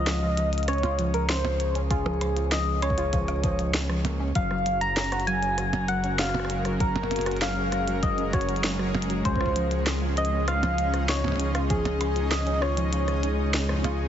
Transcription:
Already playing: analog synth bass C#2, soft synth lead D#5
0.07 synth pluck F3, cross-stick, snare, closed hi-hat
0.22 synth pluck F3
0.37 synth pluck F3, closed hi-hat
0.53 closed hi-hat
0.58 closed hi-hat
0.63 closed hi-hat
0.68 synth pluck C#4, soft synth lead C#5, cross-stick, closed hi-hat
0.73 closed hi-hat
0.78 closed hi-hat
0.83 synth pluck F4, closed hi-hat, percussion blips
0.99 synth pluck F3, closed hi-hat
1.14 synth pluck F3, soft synth lead A#4, closed hi-hat
1.29 synth pluck F3, soft synth lead C5, cross-stick, snare, closed hi-hat
1.45 synth pluck F3, percussion blips
1.60 closed hi-hat
1.75 synth pluck C#4, closed hi-hat
1.91 synth pluck F4, soft synth lead G#4, kick, closed hi-hat
2.06 synth pluck F3, percussion blips
2.21 synth pluck F3, cross-stick, closed hi-hat
2.37 synth pluck F3, closed hi-hat
2.52 synth pluck F3, soft synth lead D#5, snare, closed hi-hat
2.82 synth pluck C#4, soft synth lead C#5, cross-stick, closed hi-hat
2.90 kick
2.98 synth pluck F4, closed hi-hat
3.13 synth pluck F3, kick, closed hi-hat
3.28 synth pluck F3, cross-stick, closed hi-hat
3.44 synth pluck F3, kick, closed hi-hat
3.59 synth pluck F3, closed hi-hat
3.74 synth pluck C#4, snare, closed hi-hat
3.89 synth pluck F3, cross-stick
4.05 synth pluck A#3, closed hi-hat, percussion blips
4.20 synth pluck C#4
4.35 analog synth bass F#1, synth pluck F#3, ambient pad G#3 C#4 F#4 G#4 A#4, soft synth lead F5, kick, closed hi-hat
4.51 synth pluck F#3, cross-stick
4.66 synth pluck F#3, closed hi-hat
4.81 synth pluck F#3, soft synth lead A#5, closed hi-hat
4.97 synth pluck C#4, snare, closed hi-hat
5.04 closed hi-hat
5.12 synth pluck F#4, cross-stick, closed hi-hat
5.20 closed hi-hat
5.27 synth pluck F#3, soft synth lead G#5, closed hi-hat
5.43 synth pluck F#3, closed hi-hat
5.58 synth pluck F#3, cross-stick, closed hi-hat
5.73 synth pluck F#3, closed hi-hat, percussion blips
5.88 synth pluck F#3, soft synth lead F#5, closed hi-hat
6.04 synth pluck C#4, closed hi-hat
6.19 synth pluck F#4, soft synth lead F5, cross-stick, snare, closed hi-hat
6.29 cross-stick
6.34 synth pluck F#3, cross-stick, percussion blips
6.40 cross-stick
6.45 cross-stick
6.50 synth pluck F#3, closed hi-hat
6.65 synth pluck F#3, cross-stick, closed hi-hat
6.80 synth pluck F#3, soft synth lead A#4, kick, closed hi-hat
6.96 synth pluck F#3, percussion blips
7.03 percussion blips
7.11 synth pluck C#4, closed hi-hat, percussion blips
7.16 closed hi-hat, percussion blips
7.21 closed hi-hat
7.26 synth pluck F#4, cross-stick, closed hi-hat
7.31 closed hi-hat
7.37 closed hi-hat
7.42 synth pluck F#3, soft synth lead F5, snare, closed hi-hat
7.57 synth pluck F#3
7.72 synth pluck F#3, cross-stick, closed hi-hat
7.87 synth pluck F#3, closed hi-hat
8.03 synth pluck F#3, soft synth lead D#5, kick, closed hi-hat
8.18 synth pluck C#4, closed hi-hat
8.33 synth pluck F#4, soft synth lead C#5, kick, cross-stick, closed hi-hat
8.41 closed hi-hat
8.49 synth pluck F#3, closed hi-hat
8.56 closed hi-hat
8.64 synth pluck F#3, snare, closed hi-hat
8.79 synth pluck F#3, cross-stick
8.95 synth pluck F#3, percussion blips
9.02 closed hi-hat
9.10 synth pluck F#3, closed hi-hat
9.25 analog synth bass C#2, synth pluck C#4, ambient pad C#4 D#4 D#5, soft synth lead C5, kick, closed hi-hat
9.35 kick
9.41 synth pluck F4, cross-stick
9.46 kick
9.56 synth pluck F3, closed hi-hat
9.71 synth pluck F3, closed hi-hat
9.86 synth pluck F3, cross-stick, snare, closed hi-hat
10.02 synth pluck F3
10.17 synth pluck F3, soft synth lead D#5, closed hi-hat
10.25 closed hi-hat
10.32 synth pluck C#4
10.48 synth pluck F4, soft synth lead F5, cross-stick, closed hi-hat
10.63 synth pluck F3, closed hi-hat, percussion blips
10.78 synth pluck F3, closed hi-hat
10.93 synth pluck F3, cross-stick, closed hi-hat
11.09 synth pluck F3, soft synth lead C#5, snare, closed hi-hat
11.24 synth pluck F3, percussion blips
11.28 percussion blips
11.32 percussion blips
11.36 synth pluck C#4, closed hi-hat, percussion blips
11.55 synth pluck F4, cross-stick, closed hi-hat
11.70 synth pluck F3, soft synth lead G#4, kick, closed hi-hat
11.85 synth pluck F3, closed hi-hat, percussion blips
12.01 synth pluck F3, cross-stick, closed hi-hat
12.16 synth pluck F3, closed hi-hat
12.31 synth pluck F3, soft synth lead D#5, snare, closed hi-hat
12.47 synth pluck C#4, closed hi-hat
12.62 synth pluck F4, soft synth lead C#5, cross-stick
12.77 synth pluck F3, closed hi-hat
12.93 synth pluck F3, closed hi-hat
13.08 synth pluck F3, cross-stick, closed hi-hat
13.23 synth pluck C#3, closed hi-hat
13.54 synth pluck C#3, snare, closed hi-hat
13.69 synth pluck F2, cross-stick
13.84 synth pluck F4, closed hi-hat, percussion blips

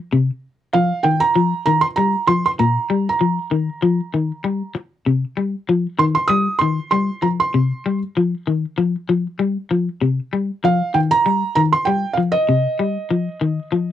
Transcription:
0.13 clean electric guitar C3
0.73 clean electric guitar F3, felt piano F5
1.03 clean electric guitar D#3, felt piano G5
1.20 felt piano A#5
1.35 clean electric guitar F3
1.66 clean electric guitar D#3, felt piano A#5
1.81 felt piano C6
1.96 clean electric guitar G3, felt piano A#5
2.27 clean electric guitar F3, felt piano C6
2.46 felt piano C6
2.59 clean electric guitar A#2, felt piano A#5
2.90 clean electric guitar G3
3.09 felt piano A#5
3.21 clean electric guitar F3
3.51 clean electric guitar D#3
3.82 clean electric guitar F3
4.14 clean electric guitar D#3
4.44 clean electric guitar G3
4.75 muted clean electric guitar stroke
5.06 clean electric guitar C3
5.37 clean electric guitar G3
5.69 clean electric guitar F3
5.99 clean electric guitar D#3, felt piano C6
6.15 felt piano C6
6.28 clean electric guitar G3, felt piano D#6
6.59 clean electric guitar D#3, felt piano C6
6.91 clean electric guitar G3, felt piano C6
7.22 clean electric guitar F3, felt piano A#5
7.40 felt piano C6
7.54 clean electric guitar C3
7.86 clean electric guitar G3
8.17 clean electric guitar F3
8.47 clean electric guitar D#3
8.78 clean electric guitar F3
9.09 clean electric guitar F3
9.39 clean electric guitar G3
9.71 clean electric guitar F3
10.01 clean electric guitar C3
10.33 clean electric guitar G3
10.64 clean electric guitar F3, felt piano F5
10.94 clean electric guitar D#3, felt piano G5
11.11 felt piano A#5
11.26 clean electric guitar G3
11.55 clean electric guitar D#3, felt piano A#5
11.73 felt piano C6
11.85 clean electric guitar G3, felt piano G5
12.13 felt piano F5
12.17 clean electric guitar F3
12.32 felt piano D#5
12.49 clean electric guitar C3
12.79 clean electric guitar G3
13.11 clean electric guitar F3
13.41 clean electric guitar D#3
13.72 clean electric guitar F3

